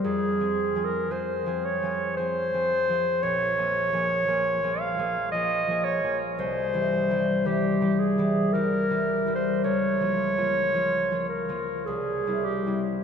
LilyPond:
<<
  \new Staff \with { instrumentName = "Clarinet" } { \time 3/4 \key bes \dorian \tempo 4 = 56 aes'8. bes'16 c''8 des''8 c''4 | des''4. f''8 ees''8 des''16 r16 | c''4 g'8 aes'8 bes'8. c''16 | des''4. bes'8 aes'8 g'16 r16 | }
  \new Staff \with { instrumentName = "Harp" } { \time 3/4 \key bes \dorian \tuplet 3/2 { <f, c'>8 <f c' aes'>8 <f c' aes'>8 <f c' aes'>8 <f c' aes'>8 <f c' aes'>8 <f c' aes'>8 <f c' aes'>8 <f c' aes'>8 } | \tuplet 3/2 { bes,,8 <f bes aes'>8 <f bes aes'>8 <f bes aes'>8 <f bes aes'>8 <f bes aes'>8 <f bes aes'>8 <f bes aes'>8 <f bes aes'>8 } | \tuplet 3/2 { c,8 <e g g'>8 <e g g'>8 <e g g'>8 <e g g'>8 <e g g'>8 <e g g'>8 <e g g'>8 <e g g'>8 } | \tuplet 3/2 { des,8 <f bes f'>8 <f bes f'>8 <f bes f'>8 <f bes f'>8 <f bes f'>8 c,8 <g c' e'>8 <g c' e'>8 } | }
>>